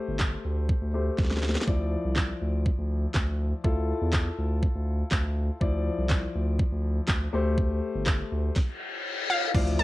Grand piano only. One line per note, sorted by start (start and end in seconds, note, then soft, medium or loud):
0.00 0.91 A3 medium
0.00 0.91 G4 medium
0.00 0.91 C5 medium
0.94 1.68 A3 medium
0.94 1.68 G4 medium
0.94 1.68 C5 medium
1.67 3.60 F3 medium
1.67 3.60 E4 medium
1.67 3.61 D5 medium
3.64 5.57 E4 medium
3.64 5.57 F4 medium
3.64 5.57 A4 medium
5.60 7.29 F3 medium
5.60 7.30 E4 medium
5.60 7.30 D5 medium
7.33 8.54 A3 medium
7.33 8.54 G4 medium
7.33 8.54 C5 medium
9.54 9.83 F3 medium
9.54 9.83 E4 medium
9.54 9.83 D5 medium